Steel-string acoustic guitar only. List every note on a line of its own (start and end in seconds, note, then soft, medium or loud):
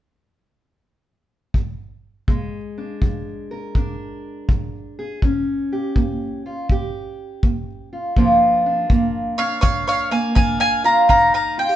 2.28 2.97 A#2 medium
2.28 5.23 G#3 medium
2.78 3.76 D4 soft
3.02 3.70 F3 medium
3.51 4.98 A#4 soft
3.76 4.44 F2 medium
3.76 5.20 D4 medium
4.49 5.17 F3 medium
4.99 5.20 G#4 soft
5.23 5.91 D#3 medium
5.23 8.14 C#4 medium
5.73 6.45 G4 medium
5.96 6.65 A#3 medium
6.46 6.70 F4 medium
6.70 7.38 A#2 medium
6.70 7.92 G4 medium
7.44 8.12 A#3 medium
7.93 8.19 F4 soft
8.17 8.85 A#2 medium
8.17 8.88 F3 medium
8.17 8.90 A#3 medium
8.17 8.65 D4 medium
8.17 10.83 F4 medium
8.66 9.38 D4 medium
8.90 9.58 F3 medium
8.90 10.11 A#3 medium
9.39 10.35 D4 medium
9.63 10.31 F2 medium
10.11 11.76 A#3 medium
10.35 11.04 F3 medium
10.35 11.06 D4 medium
10.84 11.09 F4 medium
11.09 11.76 D#3 medium
11.09 11.76 D#4 medium
11.58 11.69 F4 medium
11.69 11.76 G4 medium